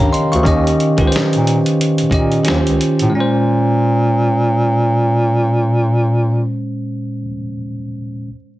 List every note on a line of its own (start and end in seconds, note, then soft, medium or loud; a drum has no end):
0.00 0.10 G2 medium
0.00 0.43 D#3 medium
0.00 0.45 C#4 medium
0.00 0.46 G4 medium
0.00 0.47 A#4 medium
0.00 0.12 C#5 soft
0.00 0.32 F5 medium
0.00 0.46 G5 medium
0.00 0.11 A#5 medium
0.13 0.31 D#5 soft
0.13 0.31 C6 medium
0.13 closed hi-hat medium
0.32 0.44 D2 medium
0.32 0.63 F5 soft
0.32 0.63 C#6 medium
0.32 closed hi-hat soft
0.43 0.72 D#2 medium
0.43 0.85 D#3 loud
0.43 0.86 C#4 medium
0.43 0.86 G4 medium
0.43 kick medium
0.43 closed hi-hat medium
0.47 0.87 D#5 loud
0.67 closed hi-hat soft
0.80 closed hi-hat medium
0.97 1.10 C#2 medium
0.97 1.88 D#3 medium
0.97 1.89 C#4 medium
0.97 1.90 G4 medium
0.97 kick medium
0.97 closed hi-hat soft
1.01 1.05 B4 medium
1.07 1.94 C5 medium
1.12 1.22 A#2 soft
1.12 snare loud
1.12 closed hi-hat medium
1.33 1.60 A#2 medium
1.33 closed hi-hat soft
1.47 closed hi-hat medium
1.66 closed hi-hat soft
1.81 closed hi-hat medium
1.98 2.06 A#2 soft
1.98 closed hi-hat soft
2.10 2.39 A#2 medium
2.10 2.42 D#3 medium
2.10 2.44 C#4 medium
2.10 2.45 G4 medium
2.10 kick medium
2.10 closed hi-hat medium
2.14 2.46 D#5 medium
2.32 closed hi-hat soft
2.44 3.00 D#3 medium
2.44 3.01 C#4 medium
2.44 3.01 F4 medium
2.44 3.02 G4 medium
2.44 closed hi-hat medium
2.48 2.63 D#2 medium
2.48 3.02 C5 medium
2.48 snare medium
2.67 2.78 C#2 medium
2.67 closed hi-hat soft
2.81 closed hi-hat medium
2.99 3.11 A2 medium
2.99 closed hi-hat soft
3.04 7.20 A#2 medium
3.10 7.23 G#3 medium
3.15 6.56 A#2 medium
3.15 7.26 C#4 medium
3.20 7.29 C5 medium